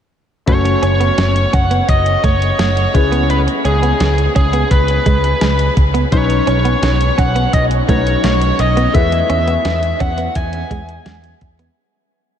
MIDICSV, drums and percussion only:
0, 0, Header, 1, 2, 480
1, 0, Start_track
1, 0, Tempo, 705882
1, 323, Time_signature, 4, 2, 24, 8
1, 8425, End_track
2, 0, Start_track
2, 0, Title_t, "Drums"
2, 323, Note_on_c, 9, 36, 92
2, 323, Note_on_c, 9, 42, 64
2, 391, Note_off_c, 9, 36, 0
2, 391, Note_off_c, 9, 42, 0
2, 445, Note_on_c, 9, 42, 44
2, 513, Note_off_c, 9, 42, 0
2, 563, Note_on_c, 9, 42, 62
2, 631, Note_off_c, 9, 42, 0
2, 684, Note_on_c, 9, 42, 47
2, 752, Note_off_c, 9, 42, 0
2, 802, Note_on_c, 9, 42, 73
2, 804, Note_on_c, 9, 38, 88
2, 870, Note_off_c, 9, 42, 0
2, 872, Note_off_c, 9, 38, 0
2, 924, Note_on_c, 9, 42, 51
2, 992, Note_off_c, 9, 42, 0
2, 1043, Note_on_c, 9, 42, 64
2, 1044, Note_on_c, 9, 36, 79
2, 1111, Note_off_c, 9, 42, 0
2, 1112, Note_off_c, 9, 36, 0
2, 1163, Note_on_c, 9, 42, 50
2, 1231, Note_off_c, 9, 42, 0
2, 1282, Note_on_c, 9, 36, 77
2, 1282, Note_on_c, 9, 42, 87
2, 1350, Note_off_c, 9, 36, 0
2, 1350, Note_off_c, 9, 42, 0
2, 1401, Note_on_c, 9, 42, 51
2, 1469, Note_off_c, 9, 42, 0
2, 1521, Note_on_c, 9, 36, 83
2, 1524, Note_on_c, 9, 42, 69
2, 1589, Note_off_c, 9, 36, 0
2, 1592, Note_off_c, 9, 42, 0
2, 1645, Note_on_c, 9, 42, 47
2, 1713, Note_off_c, 9, 42, 0
2, 1763, Note_on_c, 9, 38, 108
2, 1763, Note_on_c, 9, 42, 75
2, 1831, Note_off_c, 9, 38, 0
2, 1831, Note_off_c, 9, 42, 0
2, 1883, Note_on_c, 9, 42, 49
2, 1951, Note_off_c, 9, 42, 0
2, 2003, Note_on_c, 9, 36, 96
2, 2004, Note_on_c, 9, 42, 64
2, 2071, Note_off_c, 9, 36, 0
2, 2072, Note_off_c, 9, 42, 0
2, 2125, Note_on_c, 9, 42, 51
2, 2193, Note_off_c, 9, 42, 0
2, 2244, Note_on_c, 9, 42, 66
2, 2312, Note_off_c, 9, 42, 0
2, 2365, Note_on_c, 9, 42, 47
2, 2433, Note_off_c, 9, 42, 0
2, 2483, Note_on_c, 9, 42, 58
2, 2551, Note_off_c, 9, 42, 0
2, 2605, Note_on_c, 9, 42, 48
2, 2673, Note_off_c, 9, 42, 0
2, 2722, Note_on_c, 9, 42, 74
2, 2724, Note_on_c, 9, 38, 88
2, 2790, Note_off_c, 9, 42, 0
2, 2792, Note_off_c, 9, 38, 0
2, 2844, Note_on_c, 9, 42, 50
2, 2912, Note_off_c, 9, 42, 0
2, 2964, Note_on_c, 9, 36, 78
2, 2964, Note_on_c, 9, 42, 68
2, 3032, Note_off_c, 9, 36, 0
2, 3032, Note_off_c, 9, 42, 0
2, 3082, Note_on_c, 9, 42, 51
2, 3150, Note_off_c, 9, 42, 0
2, 3202, Note_on_c, 9, 36, 79
2, 3202, Note_on_c, 9, 42, 92
2, 3270, Note_off_c, 9, 36, 0
2, 3270, Note_off_c, 9, 42, 0
2, 3320, Note_on_c, 9, 42, 51
2, 3388, Note_off_c, 9, 42, 0
2, 3440, Note_on_c, 9, 36, 81
2, 3442, Note_on_c, 9, 42, 76
2, 3508, Note_off_c, 9, 36, 0
2, 3510, Note_off_c, 9, 42, 0
2, 3563, Note_on_c, 9, 42, 46
2, 3631, Note_off_c, 9, 42, 0
2, 3681, Note_on_c, 9, 38, 107
2, 3681, Note_on_c, 9, 42, 70
2, 3749, Note_off_c, 9, 38, 0
2, 3749, Note_off_c, 9, 42, 0
2, 3802, Note_on_c, 9, 42, 52
2, 3870, Note_off_c, 9, 42, 0
2, 3923, Note_on_c, 9, 36, 81
2, 3923, Note_on_c, 9, 42, 60
2, 3991, Note_off_c, 9, 36, 0
2, 3991, Note_off_c, 9, 42, 0
2, 4044, Note_on_c, 9, 42, 50
2, 4112, Note_off_c, 9, 42, 0
2, 4163, Note_on_c, 9, 36, 95
2, 4163, Note_on_c, 9, 42, 65
2, 4231, Note_off_c, 9, 36, 0
2, 4231, Note_off_c, 9, 42, 0
2, 4283, Note_on_c, 9, 42, 48
2, 4351, Note_off_c, 9, 42, 0
2, 4402, Note_on_c, 9, 42, 57
2, 4470, Note_off_c, 9, 42, 0
2, 4524, Note_on_c, 9, 42, 51
2, 4592, Note_off_c, 9, 42, 0
2, 4642, Note_on_c, 9, 42, 72
2, 4644, Note_on_c, 9, 38, 90
2, 4710, Note_off_c, 9, 42, 0
2, 4712, Note_off_c, 9, 38, 0
2, 4764, Note_on_c, 9, 42, 50
2, 4832, Note_off_c, 9, 42, 0
2, 4885, Note_on_c, 9, 36, 81
2, 4886, Note_on_c, 9, 42, 68
2, 4953, Note_off_c, 9, 36, 0
2, 4954, Note_off_c, 9, 42, 0
2, 5004, Note_on_c, 9, 42, 50
2, 5072, Note_off_c, 9, 42, 0
2, 5123, Note_on_c, 9, 36, 80
2, 5123, Note_on_c, 9, 42, 89
2, 5191, Note_off_c, 9, 36, 0
2, 5191, Note_off_c, 9, 42, 0
2, 5242, Note_on_c, 9, 42, 49
2, 5310, Note_off_c, 9, 42, 0
2, 5362, Note_on_c, 9, 36, 83
2, 5365, Note_on_c, 9, 42, 75
2, 5430, Note_off_c, 9, 36, 0
2, 5433, Note_off_c, 9, 42, 0
2, 5486, Note_on_c, 9, 42, 47
2, 5554, Note_off_c, 9, 42, 0
2, 5602, Note_on_c, 9, 38, 104
2, 5602, Note_on_c, 9, 42, 76
2, 5670, Note_off_c, 9, 38, 0
2, 5670, Note_off_c, 9, 42, 0
2, 5722, Note_on_c, 9, 42, 51
2, 5790, Note_off_c, 9, 42, 0
2, 5842, Note_on_c, 9, 42, 65
2, 5910, Note_off_c, 9, 42, 0
2, 5964, Note_on_c, 9, 42, 52
2, 6032, Note_off_c, 9, 42, 0
2, 6083, Note_on_c, 9, 36, 95
2, 6083, Note_on_c, 9, 42, 71
2, 6151, Note_off_c, 9, 36, 0
2, 6151, Note_off_c, 9, 42, 0
2, 6204, Note_on_c, 9, 42, 45
2, 6272, Note_off_c, 9, 42, 0
2, 6322, Note_on_c, 9, 42, 60
2, 6390, Note_off_c, 9, 42, 0
2, 6443, Note_on_c, 9, 42, 47
2, 6511, Note_off_c, 9, 42, 0
2, 6562, Note_on_c, 9, 42, 75
2, 6564, Note_on_c, 9, 38, 90
2, 6630, Note_off_c, 9, 42, 0
2, 6632, Note_off_c, 9, 38, 0
2, 6683, Note_on_c, 9, 42, 50
2, 6751, Note_off_c, 9, 42, 0
2, 6802, Note_on_c, 9, 42, 64
2, 6804, Note_on_c, 9, 36, 81
2, 6870, Note_off_c, 9, 42, 0
2, 6872, Note_off_c, 9, 36, 0
2, 6920, Note_on_c, 9, 42, 47
2, 6988, Note_off_c, 9, 42, 0
2, 7041, Note_on_c, 9, 42, 86
2, 7042, Note_on_c, 9, 36, 78
2, 7109, Note_off_c, 9, 42, 0
2, 7110, Note_off_c, 9, 36, 0
2, 7160, Note_on_c, 9, 42, 48
2, 7228, Note_off_c, 9, 42, 0
2, 7281, Note_on_c, 9, 36, 80
2, 7283, Note_on_c, 9, 42, 71
2, 7349, Note_off_c, 9, 36, 0
2, 7351, Note_off_c, 9, 42, 0
2, 7403, Note_on_c, 9, 42, 47
2, 7471, Note_off_c, 9, 42, 0
2, 7520, Note_on_c, 9, 38, 105
2, 7520, Note_on_c, 9, 42, 73
2, 7588, Note_off_c, 9, 38, 0
2, 7588, Note_off_c, 9, 42, 0
2, 7641, Note_on_c, 9, 42, 47
2, 7709, Note_off_c, 9, 42, 0
2, 7761, Note_on_c, 9, 42, 58
2, 7762, Note_on_c, 9, 36, 91
2, 7829, Note_off_c, 9, 42, 0
2, 7830, Note_off_c, 9, 36, 0
2, 7882, Note_on_c, 9, 42, 53
2, 7950, Note_off_c, 9, 42, 0
2, 8425, End_track
0, 0, End_of_file